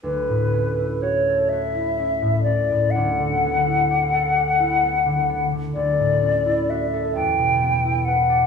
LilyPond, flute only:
\new Staff \with { instrumentName = "Flute" } { \time 6/8 \key d \major \tempo 4. = 43 b'4 cis''8 e''4 d''8 | fis''2. | d''4 e''8 g''4 fis''8 | }